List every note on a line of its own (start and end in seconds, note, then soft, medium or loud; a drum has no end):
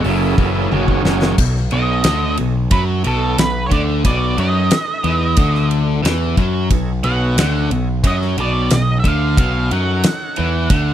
0.04 0.33 F#1 medium
0.04 0.35 F#2 medium
0.04 0.35 C#3 medium
0.04 1.35 F#3 medium
0.04 open hi-hat medium
0.08 1.36 A#3 medium
0.08 0.38 E4 medium
0.08 1.36 G#4 medium
0.08 0.40 A4 loud
0.38 0.67 F#1 medium
0.38 0.68 F#2 medium
0.38 0.68 E3 medium
0.38 kick medium
0.43 0.72 E4 medium
0.43 0.74 A4 medium
0.71 1.01 F#1 medium
0.71 1.01 F#2 medium
0.71 1.01 D#3 medium
0.71 high tom medium
0.76 1.36 C#4 medium
0.76 1.39 F#4 loud
0.88 kick medium
1.05 1.34 F#1 medium
1.05 1.35 F#2 medium
1.05 1.35 D#3 medium
1.05 snare medium
1.22 snare medium
1.38 1.69 B1 medium
1.38 1.65 B2 medium
1.38 1.61 D#4 medium
1.38 1.61 A4 medium
1.38 kick loud
1.38 crash loud
1.43 1.61 C#5 medium
1.56 snare soft
1.71 2.03 B1 medium
1.71 2.04 B2 medium
1.71 2.56 A4 medium
1.71 2.56 C#5 medium
1.71 2.35 D#5 loud
1.71 2.55 D#5 medium
1.71 ride medium
2.04 2.36 D2 medium
2.04 2.37 D3 loud
2.04 snare loud
2.04 ride medium
2.37 2.70 B1 medium
2.37 2.65 B2 medium
2.37 ride medium
2.71 3.03 F#2 medium
2.71 3.04 F#3 loud
2.71 2.81 B4 medium
2.71 kick loud
2.71 ride loud
3.04 3.36 B1 medium
3.04 3.37 B2 loud
3.04 3.39 A4 medium
3.04 ride medium
3.38 3.69 B1 medium
3.38 3.65 B2 medium
3.38 3.66 B4 medium
3.38 snare loud
3.38 ride medium
3.66 4.03 D3 medium
3.66 3.72 C#5 medium
3.71 4.02 D2 medium
3.71 3.81 D5 medium
3.71 kick medium
3.71 ride medium
4.05 4.36 B1 medium
4.05 4.37 B2 loud
4.05 4.26 D#4 medium
4.05 4.26 A4 medium
4.05 4.26 C#5 medium
4.05 4.37 D5 medium
4.05 kick loud
4.05 ride loud
4.38 4.69 F#2 medium
4.38 4.70 F#3 medium
4.38 5.22 D#4 medium
4.38 5.23 A4 medium
4.38 5.23 B4 medium
4.38 5.68 D#5 medium
4.38 ride medium
4.71 snare loud
4.71 ride medium
5.04 5.35 E2 medium
5.04 5.37 E3 medium
5.04 ride medium
5.37 6.01 D2 medium
5.37 6.02 D3 loud
5.37 kick loud
5.37 ride medium
5.55 snare soft
5.71 ride medium
6.03 6.35 E2 medium
6.03 6.36 E3 loud
6.03 snare loud
6.03 ride medium
6.37 6.69 F#2 medium
6.37 6.70 F#3 medium
6.37 kick medium
6.37 ride medium
6.70 7.02 B1 medium
6.70 6.98 B2 medium
6.70 6.92 D#4 medium
6.70 6.93 A4 medium
6.70 6.93 C#5 loud
6.70 kick loud
6.70 ride medium
7.03 7.36 B1 medium
7.03 7.37 B2 medium
7.03 7.89 A4 medium
7.03 7.89 C#5 medium
7.03 7.88 D#5 medium
7.03 7.67 F#5 loud
7.03 ride medium
7.37 7.68 D2 medium
7.37 7.71 D3 loud
7.37 snare loud
7.37 ride medium
7.70 8.02 B1 medium
7.70 7.98 B2 medium
7.70 ride medium
8.03 8.35 F#2 medium
8.03 8.38 F#3 loud
8.03 8.16 D#5 medium
8.03 kick loud
8.03 ride medium
8.22 snare soft
8.37 8.69 B1 medium
8.37 8.71 B2 medium
8.37 8.70 D5 medium
8.37 ride medium
8.70 9.03 B1 medium
8.70 8.98 B2 medium
8.70 8.99 D#5 medium
8.70 snare loud
8.70 ride loud
9.00 9.06 E5 medium
9.04 9.36 D2 medium
9.04 9.37 D3 loud
9.04 kick medium
9.04 ride medium
9.08 9.38 F5 medium
9.37 9.68 B1 medium
9.37 9.71 B2 medium
9.37 9.59 D#4 medium
9.37 9.59 A4 medium
9.37 9.60 C#5 medium
9.37 9.73 F5 loud
9.37 kick loud
9.37 ride medium
9.71 10.02 F#2 medium
9.71 10.04 F#3 medium
9.71 10.54 D#4 medium
9.71 10.55 A4 medium
9.71 10.55 C#5 medium
9.71 10.94 F#5 medium
9.71 ride medium
10.03 snare loud
10.03 ride loud
10.36 10.70 E2 medium
10.36 10.70 E3 loud
10.36 ride medium
10.70 10.94 D2 medium
10.70 10.94 D3 loud
10.70 kick loud
10.70 ride medium